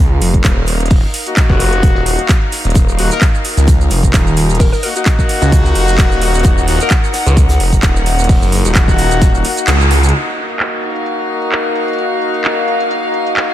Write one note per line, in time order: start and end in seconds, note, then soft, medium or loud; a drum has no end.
0.00 0.20 C#2 loud
0.00 10.13 D#4 medium
0.00 10.14 A#4 medium
0.00 4.90 F5 medium
0.21 0.43 F1 loud
0.21 snare soft
0.21 open hi-hat loud
0.21 shaker medium
0.34 kick medium
0.34 closed hi-hat medium
0.44 0.66 D#1 loud
0.44 kick loud
0.44 snare loud
0.44 clap loud
0.44 closed hi-hat medium
0.44 shaker medium
0.67 1.01 D#1 medium
0.67 open hi-hat medium
0.67 shaker medium
0.80 closed hi-hat soft
0.86 closed hi-hat medium
0.90 kick loud
0.90 closed hi-hat medium
0.90 open hi-hat medium
1.14 open hi-hat loud
1.14 shaker medium
1.26 2.39 A#3 loud
1.26 2.39 D#4 medium
1.26 2.39 F#4 loud
1.26 closed hi-hat soft
1.37 kick loud
1.37 snare loud
1.37 clap loud
1.37 closed hi-hat medium
1.37 shaker medium
1.50 1.81 F1 medium
1.50 kick medium
1.50 snare medium
1.60 open hi-hat medium
1.60 shaker medium
1.73 closed hi-hat soft
1.83 2.17 D#1 medium
1.83 kick loud
1.83 closed hi-hat medium
1.83 shaker medium
1.95 snare medium
2.06 open hi-hat loud
2.06 shaker medium
2.19 closed hi-hat soft
2.29 kick loud
2.29 snare loud
2.29 clap loud
2.29 closed hi-hat medium
2.29 shaker medium
2.52 snare soft
2.52 open hi-hat medium
2.52 shaker medium
2.65 2.74 D#1 medium
2.65 snare soft
2.65 closed hi-hat soft
2.70 closed hi-hat medium
2.75 3.09 D#1 loud
2.75 kick loud
2.75 closed hi-hat medium
2.75 shaker medium
2.89 shaker soft
2.98 3.09 A#3 medium
2.98 3.09 D#4 medium
2.98 3.09 F#4 loud
2.98 open hi-hat loud
2.98 shaker medium
3.11 3.24 A#3 loud
3.11 3.24 D#4 medium
3.11 3.24 A#4 loud
3.11 closed hi-hat soft
3.11 shaker medium
3.21 kick loud
3.21 snare loud
3.21 clap loud
3.21 closed hi-hat medium
3.21 shaker medium
3.35 shaker soft
3.45 open hi-hat medium
3.45 shaker medium
3.57 3.89 C#2 loud
3.57 closed hi-hat soft
3.57 shaker medium
3.68 kick loud
3.68 closed hi-hat medium
3.68 shaker medium
3.81 shaker soft
3.91 4.12 F1 medium
3.91 snare soft
3.91 open hi-hat loud
3.91 shaker medium
4.03 kick medium
4.03 closed hi-hat medium
4.03 shaker medium
4.14 4.35 D#1 loud
4.14 kick loud
4.14 snare loud
4.14 clap loud
4.14 closed hi-hat medium
4.14 shaker medium
4.27 shaker soft
4.37 4.71 D#1 medium
4.37 open hi-hat medium
4.37 shaker medium
4.50 closed hi-hat soft
4.50 shaker medium
4.55 closed hi-hat medium
4.60 4.68 A#4 medium
4.60 kick loud
4.60 closed hi-hat medium
4.60 open hi-hat medium
4.60 shaker medium
4.73 4.79 A#4 medium
4.73 10.14 F#5 medium
4.73 shaker soft
4.83 4.93 A#3 medium
4.83 4.93 D#4 medium
4.83 4.93 F#4 loud
4.83 5.48 A#4 medium
4.83 open hi-hat loud
4.83 shaker medium
4.96 6.65 A#3 loud
4.96 6.65 D#4 loud
4.96 6.65 F#4 loud
4.96 closed hi-hat soft
4.96 closed hi-hat medium
4.96 shaker medium
5.06 kick loud
5.06 snare loud
5.06 clap loud
5.06 closed hi-hat medium
5.06 shaker medium
5.19 kick medium
5.19 snare medium
5.19 shaker soft
5.29 open hi-hat medium
5.29 shaker medium
5.42 5.74 C#2 loud
5.42 closed hi-hat medium
5.42 shaker medium
5.52 kick loud
5.52 closed hi-hat medium
5.52 shaker medium
5.65 snare medium
5.65 shaker soft
5.75 5.97 F1 medium
5.75 open hi-hat loud
5.75 shaker medium
5.88 closed hi-hat medium
5.88 shaker medium
5.98 6.20 D#1 loud
5.98 kick loud
5.98 snare loud
5.98 clap loud
5.98 closed hi-hat medium
5.98 shaker medium
6.12 shaker soft
6.21 6.43 D#1 loud
6.21 snare soft
6.21 open hi-hat medium
6.21 shaker medium
6.34 snare medium
6.34 closed hi-hat soft
6.34 shaker medium
6.39 closed hi-hat medium
6.43 6.78 D#1 loud
6.43 kick loud
6.43 closed hi-hat medium
6.43 shaker medium
6.45 shaker medium
6.58 shaker soft
6.68 6.78 A#3 medium
6.68 6.78 D#4 medium
6.68 6.78 F#4 loud
6.68 open hi-hat loud
6.68 shaker medium
6.80 6.93 A#3 loud
6.80 6.93 D#4 medium
6.80 6.93 A#4 loud
6.80 closed hi-hat medium
6.80 shaker medium
6.90 kick loud
6.90 snare loud
6.90 clap loud
6.90 closed hi-hat medium
6.90 shaker medium
7.04 shaker soft
7.14 snare loud
7.14 open hi-hat medium
7.14 shaker medium
7.26 7.58 C#2 loud
7.26 snare soft
7.26 closed hi-hat medium
7.26 shaker medium
7.37 kick loud
7.37 closed hi-hat medium
7.37 shaker medium
7.49 snare loud
7.49 shaker medium
7.49 shaker soft
7.60 7.81 F1 medium
7.60 snare soft
7.60 open hi-hat loud
7.72 kick medium
7.72 closed hi-hat medium
7.72 shaker medium
7.83 8.04 D#1 loud
7.83 kick loud
7.83 snare loud
7.83 clap loud
7.83 closed hi-hat medium
7.83 shaker medium
7.96 shaker soft
8.06 8.40 D#1 loud
8.06 open hi-hat medium
8.06 shaker medium
8.19 closed hi-hat soft
8.19 shaker medium
8.24 closed hi-hat medium
8.29 kick loud
8.29 closed hi-hat medium
8.29 open hi-hat medium
8.29 shaker medium
8.42 8.63 F#1 medium
8.42 shaker soft
8.52 open hi-hat loud
8.52 shaker medium
8.65 8.86 D#1 medium
8.65 9.78 A#3 loud
8.65 9.78 D#4 loud
8.65 9.78 F#4 loud
8.65 closed hi-hat medium
8.65 closed hi-hat soft
8.65 shaker medium
8.75 kick loud
8.75 snare loud
8.75 clap loud
8.75 closed hi-hat medium
8.75 shaker medium
8.88 9.32 D#1 loud
8.88 kick medium
8.88 snare medium
8.88 shaker soft
8.98 open hi-hat medium
8.98 shaker medium
9.11 closed hi-hat medium
9.11 shaker medium
9.21 kick loud
9.21 snare loud
9.21 closed hi-hat medium
9.21 shaker medium
9.34 9.43 D#1 loud
9.34 shaker soft
9.44 open hi-hat loud
9.44 shaker medium
9.57 closed hi-hat medium
9.57 shaker medium
9.67 10.12 C#2 loud
9.67 clap loud
9.67 closed hi-hat medium
9.67 shaker medium
9.81 shaker soft
9.91 snare medium
9.91 open hi-hat medium
9.91 shaker medium
10.03 snare soft
10.03 closed hi-hat medium
10.03 shaker medium
10.09 closed hi-hat medium
10.14 13.54 A#3 medium
10.14 13.54 D#4 medium
10.14 13.54 F#4 medium
10.26 13.54 A#4 medium
10.50 closed hi-hat soft
10.60 clap loud
10.60 closed hi-hat medium
10.83 13.54 F5 medium
10.83 closed hi-hat soft
10.96 closed hi-hat medium
11.06 closed hi-hat medium
11.42 closed hi-hat soft
11.52 clap loud
11.52 closed hi-hat medium
11.75 closed hi-hat medium
11.88 closed hi-hat soft
11.93 closed hi-hat medium
11.98 closed hi-hat medium
12.22 closed hi-hat soft
12.34 closed hi-hat soft
12.44 clap loud
12.44 closed hi-hat medium
12.68 closed hi-hat soft
12.80 closed hi-hat soft
12.91 closed hi-hat medium
13.14 closed hi-hat soft
13.27 closed hi-hat soft
13.37 clap loud
13.37 closed hi-hat medium